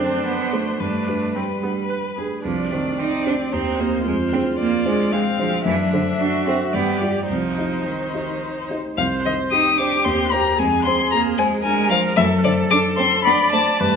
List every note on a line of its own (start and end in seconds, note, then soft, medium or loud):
0.00 0.83 F#2 soft
0.00 0.25 C4 medium
0.00 0.53 D4 soft
0.00 0.78 D4 soft
0.00 0.53 A4 soft
0.00 0.53 C5 soft
0.00 0.81 C5 soft
0.25 0.55 B3 soft
0.53 0.80 A3 soft
0.53 0.78 D4 soft
0.53 0.78 A4 soft
0.53 0.78 C5 soft
0.79 1.07 G2 soft
0.79 1.38 A3 soft
0.79 1.34 D4 soft
0.79 1.34 B4 soft
1.08 1.59 D4 soft
1.08 1.59 G4 soft
1.08 1.59 B4 soft
1.34 1.90 G3 soft
1.34 1.43 C4 soft
1.34 2.22 B4 soft
1.63 1.71 B3 soft
1.63 2.13 D4 soft
1.63 2.13 G4 soft
1.63 2.14 B4 soft
1.89 1.97 B4 soft
2.17 2.42 D4 soft
2.17 2.42 G4 soft
2.17 2.44 G#4 soft
2.17 2.42 B4 soft
2.44 2.71 C2 soft
2.44 2.74 F3 soft
2.44 3.00 D4 soft
2.44 3.53 D5 soft
2.72 3.01 D#3 soft
2.72 3.22 C4 soft
2.72 3.22 G4 soft
2.72 3.22 C5 soft
2.98 3.54 C4 soft
2.98 3.25 D#4 soft
3.26 3.50 C4 soft
3.26 3.34 D4 medium
3.26 3.50 G4 soft
3.26 3.51 C5 soft
3.52 3.79 D#2 soft
3.52 3.81 C4 medium
3.52 4.05 D#4 soft
3.52 4.06 C5 soft
3.80 4.06 A#3 soft
3.80 4.04 C4 soft
3.80 4.04 G4 soft
3.80 4.04 C5 soft
4.05 4.32 F2 soft
4.05 4.15 G#3 medium
4.05 5.14 F4 soft
4.05 4.58 C5 soft
4.32 4.41 C4 medium
4.32 4.82 D4 soft
4.32 4.82 G#4 soft
4.32 4.82 C5 soft
4.59 4.86 A#3 medium
4.59 5.13 D5 soft
4.85 5.12 G#3 medium
4.85 5.35 D4 soft
4.85 5.35 G#4 soft
4.85 5.35 C5 soft
5.11 5.21 G#3 medium
5.11 5.65 C4 soft
5.11 5.65 F5 soft
5.39 5.65 F3 medium
5.39 5.63 D4 soft
5.39 5.63 G#4 soft
5.39 5.63 C5 soft
5.65 5.92 F#2 soft
5.65 5.74 E3 medium
5.65 6.21 D4 soft
5.65 6.75 E5 soft
5.93 6.02 D3 soft
5.93 6.42 D4 soft
5.93 6.42 A4 soft
5.93 6.43 C5 soft
6.20 6.46 D4 medium
6.20 6.75 F#4 soft
6.47 6.55 C4 medium
6.47 6.71 D4 soft
6.47 6.72 A4 soft
6.47 6.72 C5 soft
6.73 7.01 G2 soft
6.73 7.01 B3 medium
6.73 7.29 G4 soft
6.73 7.29 D5 soft
7.01 7.10 G3 soft
7.01 7.27 F4 soft
7.01 7.27 G4 soft
7.01 7.27 D5 soft
7.29 7.57 C2 soft
7.29 7.88 F3 soft
7.29 8.74 D#4 soft
7.29 8.74 C5 soft
7.58 8.10 D#4 soft
7.58 8.10 G4 soft
7.58 8.10 D#5 soft
7.86 8.70 D#3 soft
8.13 8.66 D#4 soft
8.13 8.66 G4 soft
8.13 8.66 D#5 soft
8.70 8.95 D#4 soft
8.70 8.95 G4 soft
8.70 8.95 D#5 soft
8.97 10.02 C2 soft
8.97 9.06 F3 soft
8.97 9.53 C5 soft
8.97 9.05 F5 medium
9.25 9.33 D#3 soft
9.25 9.68 C5 soft
9.25 9.33 D#5 soft
9.51 9.77 D#4 medium
9.51 9.95 G4 soft
9.51 10.57 G4 soft
9.51 9.79 D#6 medium
9.78 10.07 D4 medium
9.78 10.06 C5 soft
9.78 10.06 D6 medium
10.04 10.57 D#2 soft
10.04 10.34 C4 medium
10.04 10.33 C6 medium
10.32 10.58 A#3 soft
10.32 10.56 G4 soft
10.32 10.56 C5 soft
10.32 10.60 A#5 medium
10.58 12.13 F2 soft
10.58 10.67 G#3 medium
10.58 11.62 G#4 medium
10.58 10.84 G#5 medium
10.84 10.93 C4 medium
10.84 11.28 C5 soft
10.84 11.11 C6 medium
11.11 11.40 A#3 medium
11.11 11.54 G#4 soft
11.11 11.19 A#5 medium
11.38 11.65 G#3 medium
11.38 11.80 C5 soft
11.38 11.46 G#5 medium
11.63 11.92 G#3 medium
11.63 12.07 D4 soft
11.63 12.18 A#4 medium
11.63 11.89 G#5 medium
11.90 12.16 F3 medium
11.90 12.17 C5 soft
11.90 11.98 F5 medium
12.16 13.76 F#2 medium
12.16 12.25 E3 medium
12.16 13.26 A4 medium
12.16 12.24 E5 medium
12.44 12.53 D3 soft
12.44 12.87 C5 soft
12.44 12.52 D5 medium
12.70 12.79 D4 medium
12.70 13.14 A4 soft
12.70 12.78 D6 medium
12.97 13.07 C4 medium
12.97 13.41 C5 soft
12.97 13.24 C6 medium
13.24 13.34 B3 medium
13.24 13.69 D4 soft
13.24 13.81 D5 medium
13.24 13.51 B5 medium
13.52 13.61 A3 medium
13.52 13.81 C5 soft
13.52 13.79 A5 medium
13.79 13.96 G2 soft
13.79 13.96 A3 medium
13.79 13.96 B4 medium
13.79 13.96 A5 medium